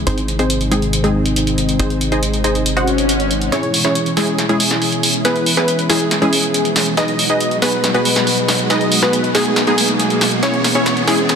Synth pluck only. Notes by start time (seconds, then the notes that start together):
0.07 C4 D#4 G#4 C5
0.39 C4 D#4 G#4 C5
0.71 G#3 C4 D#4 G#4
1.04 G#3 C4 D#4 G#4
1.79 C4 D#4 G#4 C5
2.12 D#4 G#4 C5 D#5
2.44 D#4 G#4 C5 D#5
2.77 F#4 C5 D#5 F#5
3.52 C#4 E4 G#4 C#5
3.85 C#4 E4 G#4 C#5
4.17 G#3 C#4 E4 G#4
4.49 G#3 C#4 E4 G#4
5.25 B3 E4 G#4 B4
5.57 B3 E4 G#4 B4
5.89 G#3 C#4 E4 G#4
6.22 G#3 C#4 E4 G#4
6.97 D#4 G#4 B4 D#5
7.30 D#4 G#4 B4 D#5
7.62 B3 F#4 G#4 B4
7.94 B3 F#4 G#4 B4
8.70 D#4 G#4 B4 D#5
9.03 B3 F#4 G#4 B4
9.35 G#3 B3 D#4 G#4
9.67 G#3 B3 D#4 G#4
10.43 C#4 E4 G#4 C#5
10.75 C#4 E4 G#4 C#5
11.08 G#3 C#4 E4 G#4